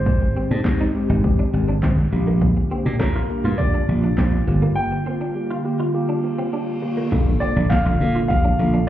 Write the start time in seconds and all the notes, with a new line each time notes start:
Already playing: D#3 G#3 C4 G4 C5
0.06 G#1, kick
0.22 muted clean electric guitar stroke
0.35 G#3 C4 G4
0.51 G#2 D4
0.64 G#2 G#3 C4 G4, kick, snare, clap
0.81 D#4
0.94 G#3 C4 G4, muted clean electric guitar stroke
1.09 G#1 D#4
1.24 G#3 C4 G4, kick
1.39 D4
1.53 G#1 G#3 C4 G4, muted clean electric guitar stroke
1.68 D4
1.82 G1 G#3 C4 G4, kick, snare, clap
2.12 A#1 D3 G3 A#3 D4 F4 G4, muted clean electric guitar stroke
2.27 A#3
2.42 kick, closed hi-hat, shaker
2.56 muted clean electric guitar stroke, shaker
2.71 A#3 C4 D4 G4, closed hi-hat, shaker
2.86 A#2 D4, shaker
2.99 A#2 A#3 D4 G4 A#4, kick, snare, clap, closed hi-hat, shaker
3.15 F4, shaker
3.29 A#3 D4 G4, muted clean electric guitar stroke, closed hi-hat, shaker
3.44 G2 F4, shaker
3.58 A#3 D4 G4 D5, kick, closed hi-hat, shaker
3.74 D4, shaker
3.88 A#1 A#3 D4 G4, muted clean electric guitar stroke, closed hi-hat, shaker
4.03 D4, shaker
4.18 A#1 A#3 C4 D4 G4, kick, snare, clap, closed hi-hat, shaker
4.32 shaker
4.47 G1 A#3 F4 G4, muted clean electric guitar stroke, closed hi-hat, shaker
4.62 A#3, shaker
4.76 G5
4.92 muted clean electric guitar stroke
5.06 A#3 C4 F4 A#4
5.21 D4
5.35 A#3 F4 G4
5.51 F4
5.64 A#3 F4 G4, muted clean electric guitar stroke
5.80 F4
5.94 A#3 F4 G4, reverse cymbal
6.09 D4
6.24 A#3 F4 G4, muted clean electric guitar stroke
6.38 C4
6.53 A#3 D4 F4 G4
6.82 A#3 F4 G4, muted clean electric guitar stroke
6.97 A#3
7.12 A#1 D3 A3 A#3 D4 F4 A4, kick, closed hi-hat, crash, tambourine, impact, shaker
7.27 muted clean electric guitar stroke, shaker
7.40 A#3 C4 D4 A4 D5, open hi-hat, tambourine, shaker
7.56 A#1 D4, shaker
7.70 A#3 D4 A4 F5, kick, snare, clap, closed hi-hat, tambourine, shaker
7.86 A#1 F4, shaker
8.00 A#2 A#3 D4 A4, muted clean electric guitar stroke, open hi-hat, tambourine, shaker
8.15 F4, shaker
8.28 A#1 A#3 D4 G4 F5, kick, closed hi-hat, tambourine, shaker
8.44 D4, shaker
8.59 A#1 A#3 D4 A4, muted clean electric guitar stroke, open hi-hat, shaker
8.74 D4, shaker